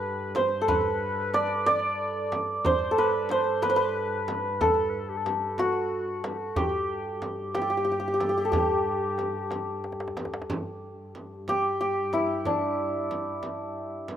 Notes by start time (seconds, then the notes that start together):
Already playing: G2 G4 A4 B4
0.03 tombak ka
0.35 C5, tombak tek, frame drum
0.61 A4
0.68 B4, frame drum, tombak dum
1.02 tombak ka
1.34 D5, tombak tek, frame drum
1.66 D5, tombak tek, frame drum
2.32 tombak tek, frame drum
2.64 G2 C5, frame drum, tombak dum
2.91 A4
2.98 B4
3.29 C5, tombak tek, frame drum
3.62 B4, tombak tek, frame drum
3.70 C5
3.76 B4
3.95 tombak ka
4.28 tombak tek, frame drum
4.61 A4, frame drum, tombak dum
4.90 B4, tombak ka
5.00 A4
5.09 G4
5.17 A4
5.26 G4, tombak tek, frame drum
5.58 F#4, tombak tek, frame drum
5.91 tombak ka
6.24 F#4, tombak tek, frame drum
6.30 G4
6.38 F#4
6.56 G2 G4, tombak dum, frame drum
6.89 tombak ka
7.22 tombak tek, frame drum
7.55 G4, tombak tek, frame drum
7.62 G4 A4
7.70 G4
7.77 G4
7.85 G4, tombak ka
7.92 G4
8.00 G4
8.08 G4
8.14 G4
8.19 G4 A4, tombak tek, frame drum
8.29 G4
8.37 G4
8.45 A4
8.52 G4, tombak dum, frame drum
8.86 tombak ka
9.18 tombak tek, frame drum
9.51 tombak tek, frame drum
9.84 tombak tek
9.92 tombak ka
10.00 tombak tek
10.08 tombak ka
10.17 tombak tek, frame drum
10.25 tombak ka
10.34 tombak tek
10.42 tombak ka
10.50 G2, frame drum
11.15 frame drum
11.48 G4, frame drum
11.81 G4
12.13 E4, frame drum
12.45 D4, frame drum
13.11 frame drum
13.43 frame drum
14.08 frame drum